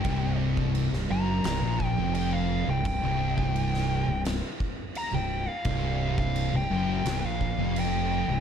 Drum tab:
CC |x---x---x---x---|x---x---x---x---|x---x---x---x---|
SD |-----o--o-------|-----o--o-------|--------o-------|
BD |o--o------o-----|o--o------o-----|o--o------o-----|